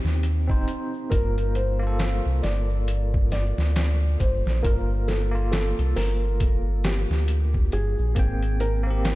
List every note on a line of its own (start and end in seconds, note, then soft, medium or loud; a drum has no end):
0.00 0.42 C4 medium
0.00 0.43 D#4 medium
0.00 0.45 G4 loud
0.04 0.49 D#2 medium
0.04 snare soft
0.04 shaker soft
0.23 closed hi-hat medium
0.23 shaker soft
0.47 0.65 G1 medium
0.47 1.06 C4 medium
0.47 1.07 D#4 medium
0.47 1.08 C5 medium
0.47 kick medium
0.67 closed hi-hat medium
0.67 shaker loud
0.94 shaker soft
1.10 2.21 G1 loud
1.10 1.74 A#3 medium
1.10 1.75 F4 medium
1.10 1.56 A#4 medium
1.10 1.76 A#4 medium
1.10 kick loud
1.10 closed hi-hat medium
1.10 shaker soft
1.38 closed hi-hat soft
1.55 2.39 C5 medium
1.55 closed hi-hat medium
1.55 shaker medium
1.79 4.59 A#3 medium
1.79 4.60 F4 medium
1.79 shaker medium
1.87 4.62 A4 loud
1.99 snare medium
1.99 closed hi-hat medium
1.99 shaker soft
2.26 2.41 C2 medium
2.43 3.53 G1 medium
2.43 3.27 D5 medium
2.43 snare soft
2.43 closed hi-hat medium
2.43 shaker medium
2.69 shaker medium
2.88 closed hi-hat medium
2.88 shaker soft
3.14 kick medium
3.30 4.23 D5 medium
3.30 snare soft
3.30 closed hi-hat medium
3.30 shaker medium
3.58 4.16 D2 medium
3.58 snare soft
3.58 shaker soft
3.75 snare loud
3.75 closed hi-hat medium
3.75 shaker soft
4.19 4.43 G1 medium
4.19 4.65 C5 medium
4.19 kick medium
4.19 closed hi-hat medium
4.19 shaker medium
4.45 4.62 A#1 medium
4.45 snare soft
4.45 shaker medium
4.63 5.73 G1 medium
4.63 5.27 A#3 medium
4.63 5.28 F4 medium
4.63 4.73 A#4 medium
4.63 5.29 A#4 medium
4.63 kick loud
4.63 closed hi-hat medium
4.63 shaker soft
5.07 5.18 A4 medium
5.07 snare soft
5.07 closed hi-hat medium
5.07 shaker medium
5.31 8.11 A#3 medium
5.31 8.13 F4 medium
5.31 shaker soft
5.52 5.97 A4 medium
5.52 snare loud
5.52 closed hi-hat medium
5.52 shaker soft
5.79 5.94 C2 loud
5.79 closed hi-hat soft
5.95 7.06 G1 medium
5.95 6.87 A#4 medium
5.95 snare soft
5.95 open hi-hat medium
5.95 shaker medium
6.22 shaker soft
6.40 kick loud
6.40 closed hi-hat medium
6.40 shaker soft
6.84 7.75 G4 medium
6.84 snare loud
6.84 closed hi-hat medium
6.84 shaker medium
7.09 7.69 D2 medium
7.09 snare soft
7.09 shaker medium
7.28 closed hi-hat medium
7.28 shaker soft
7.54 kick medium
7.71 7.96 G1 medium
7.71 8.64 G#4 loud
7.71 closed hi-hat medium
7.71 shaker medium
7.98 8.15 A#1 medium
7.98 shaker soft
8.15 9.15 G#1 medium
8.15 8.80 A#3 medium
8.15 8.81 C4 medium
8.15 kick loud
8.15 closed hi-hat medium
8.15 shaker soft
8.19 8.82 G5 medium
8.42 closed hi-hat soft
8.60 9.15 A#4 loud
8.60 closed hi-hat medium
8.60 shaker medium
8.83 9.15 A#3 medium
8.83 9.15 C4 medium
8.83 shaker soft
8.90 9.15 G4 loud
9.05 snare loud
9.05 closed hi-hat medium
9.05 shaker soft